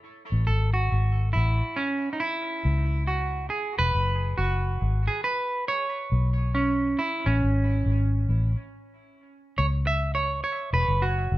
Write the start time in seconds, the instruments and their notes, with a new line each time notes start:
0.32 fingered electric bass A1
0.47 fingered electric bass G#1, clean electric guitar A4
0.74 clean electric guitar F#4
0.92 fingered electric bass G#1
1.33 fingered electric bass A1, clean electric guitar E4
1.76 clean electric guitar C#4
2.13 clean electric guitar D#4
2.20 clean electric guitar E4
2.65 fingered electric bass C#2
3.07 clean electric guitar F#4
3.50 clean electric guitar G#4
3.79 fingered electric bass E1, clean electric guitar B4
3.95 fingered electric bass F#1
4.38 fingered electric bass F#1, clean electric guitar F#4
4.82 fingered electric bass G#1
5.07 clean electric guitar G#4
5.24 clean electric guitar B4
5.68 clean electric guitar C#5
6.12 fingered electric bass B1
6.55 clean electric guitar C#4
6.99 clean electric guitar E4
7.26 fingered electric bass A1, clean electric guitar C#4
7.42 fingered electric bass G#1
7.86 fingered electric bass G#1
8.29 fingered electric bass A1
9.58 fingered electric bass C#2, clean electric guitar C#5
9.87 clean electric guitar E5
10.15 clean electric guitar C#5
10.44 clean electric guitar C#5
10.73 fingered electric bass E1, clean electric guitar B4
10.88 fingered electric bass F#1
11.02 clean electric guitar F#4
11.32 fingered electric bass F#1